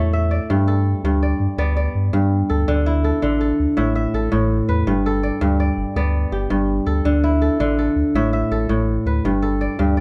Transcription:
Already playing: E2 A2 A3 F#4 A4 C#5 E5
0.13 E5
0.31 D5
0.50 G2
0.68 A4
1.04 D2 G2
1.23 D5
1.40 G2
1.58 D2 B3 D5
1.77 D5
1.95 G2
2.13 G2
2.50 D2 A4
2.68 D2 D3
2.86 E4
3.04 A4
3.22 A1 D3
3.41 A4
3.60 D2
3.77 A1 A2 E5
3.95 E5
4.14 A1 A4
4.32 A1 A2
4.69 E2 B4
4.87 G1 G2
5.06 A4
5.23 D5
5.41 D2 G2
5.60 D5
5.78 G1
5.96 D2 B3 D5
6.32 G1 G4
6.50 G1 G2
6.86 D2 A4
7.05 D2 D3
7.24 E4
7.42 A4
7.60 A1 D3
7.79 A4
7.96 D2
8.14 A1 A2 E5
8.33 E5
8.51 A1 A4
8.69 A1 A2
9.06 D2 B4
9.25 G1 G2
9.42 A4
9.61 D5
9.79 D2 G2
9.97 D5

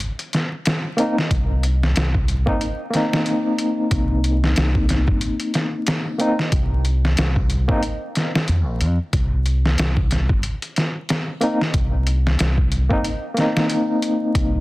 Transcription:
0.00 closed hi-hat
0.19 closed hi-hat
0.33 snare, closed hi-hat
0.66 snare, closed hi-hat
0.97 A#3 C4 D#4, closed hi-hat
1.18 snare
1.31 C2, kick, closed hi-hat
1.63 closed hi-hat
1.83 snare
1.96 C2, snare, closed hi-hat
2.14 kick
2.28 closed hi-hat
2.46 A#3 C4 D#4, kick
2.61 closed hi-hat
2.90 A#3 C4, closed hi-hat
2.95 D#4, snare
3.13 snare
3.26 closed hi-hat
3.58 closed hi-hat
3.91 C2, kick, closed hi-hat
4.24 closed hi-hat
4.44 snare
4.56 C2, snare, closed hi-hat
4.75 kick
4.89 snare, closed hi-hat
5.08 G1, kick
5.21 closed hi-hat
5.40 closed hi-hat
5.54 snare, closed hi-hat
5.87 snare, closed hi-hat
6.18 A#3 C4 D#4, closed hi-hat
6.39 snare
6.52 C2, kick, closed hi-hat
6.85 closed hi-hat
7.05 snare
7.17 C2, snare, closed hi-hat
7.36 kick
7.50 closed hi-hat
7.68 G1 A#3 C4 D#4, kick
7.83 closed hi-hat
8.15 snare, closed hi-hat
8.35 snare
8.48 F2, closed hi-hat
8.67 A#1
8.81 F2, closed hi-hat
9.13 C2, kick, closed hi-hat
9.46 closed hi-hat
9.66 snare
9.78 C2, snare, closed hi-hat
9.97 kick
10.11 snare, closed hi-hat
10.29 G1, kick
10.43 closed hi-hat
10.62 closed hi-hat
10.76 snare, closed hi-hat
11.09 snare, closed hi-hat
11.41 A#3 C4 D#4, closed hi-hat
11.61 snare
11.74 C2, kick, closed hi-hat
12.07 closed hi-hat
12.27 snare
12.39 C2, snare, closed hi-hat
12.58 kick
12.72 closed hi-hat
12.89 G1 A#3 C4 D#4, kick
13.04 closed hi-hat
13.34 A#3 C4, closed hi-hat
13.38 D#4, snare
13.57 snare
13.70 closed hi-hat
14.02 closed hi-hat
14.35 C2, kick, closed hi-hat

